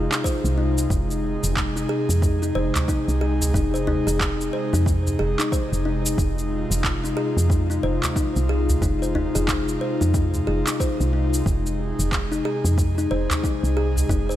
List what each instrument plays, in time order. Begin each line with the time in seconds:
Already playing: analog synth pad C3 G#3 D#4 F4
0.11 kalimba D#4, clap, cabasa
0.24 kalimba C5, kick, cabasa
0.44 fm bass C2, cabasa
0.58 kalimba D#4
0.78 cabasa
0.90 fm bass F1, analog synth pad G#4, kick, cabasa
1.11 cabasa
1.44 fm bass F1, cabasa
1.56 kick, clap, cabasa
1.76 kalimba D#4, cabasa
1.89 kalimba G#4
2.09 fm bass F2, cabasa
2.22 kick, cabasa
2.42 kalimba D#4, cabasa
2.55 fm bass F1, kalimba C5
2.75 clap, udu, cabasa
2.88 kalimba D#4, kick, cabasa
3.08 fm bass C2, cabasa
3.21 kalimba G#4
3.41 udu, cabasa
3.54 fm bass F1, kalimba D#4, kick, cabasa
3.74 kalimba C5, cabasa
3.87 kalimba D#4, udu
4.07 fm bass F1, kalimba G#4, cabasa
4.20 kalimba D#4, kick, clap, cabasa
4.41 cabasa
4.53 kalimba C5
4.73 fm bass F2, kalimba D#4, cabasa
4.86 kick, cabasa
5.07 udu, cabasa
5.19 fm bass F1, kalimba G#4
5.39 kalimba D#4, clap, cabasa
5.52 kalimba C5, kick, cabasa
5.72 fm bass F1, cabasa
5.85 kalimba D#4
6.06 cabasa
6.18 fm bass F1, analog synth pad F4, kick, cabasa
6.39 cabasa
6.71 fm bass F1, cabasa
6.84 kick, clap, cabasa
7.04 kalimba D#4, cabasa
7.17 kalimba G#4
7.37 fm bass F2, cabasa
7.50 kick, cabasa
7.70 kalimba D#4, cabasa
7.83 fm bass F1, kalimba C5
8.03 clap, udu, cabasa
8.16 kalimba D#4, kick, cabasa
8.36 fm bass C2, cabasa
8.49 kalimba G#4
8.69 udu, cabasa
8.82 fm bass F1, kalimba D#4, kick, cabasa
9.02 kalimba C5, cabasa
9.15 kalimba D#4, udu
9.35 fm bass F1, kalimba G#4, cabasa
9.48 kalimba D#4, kick, clap, cabasa
9.69 cabasa
9.81 kalimba C5
10.01 fm bass F2, kalimba D#4, cabasa
10.14 kick, cabasa
10.34 udu, cabasa
10.47 fm bass F1, kalimba G#4
10.67 kalimba D#4, clap, cabasa
10.80 kalimba C5, kick, cabasa
11.00 fm bass C2, cabasa
11.13 kalimba D#4
11.34 cabasa
11.46 fm bass F1, analog synth pad G#4, kick, cabasa
11.67 cabasa
11.99 fm bass F1, cabasa
12.12 kick, clap, cabasa
12.32 kalimba D#4, cabasa
12.45 kalimba G#4
12.65 fm bass F2, cabasa
12.78 kick, cabasa
12.98 kalimba D#4, cabasa
13.11 fm bass F1, kalimba C5
13.30 clap, udu, cabasa
13.44 kalimba D#4, kick, cabasa
13.63 fm bass C2, cabasa
13.77 kalimba G#4
13.96 udu, cabasa
14.09 fm bass F1, kalimba D#4, kick, cabasa
14.29 kalimba C5, cabasa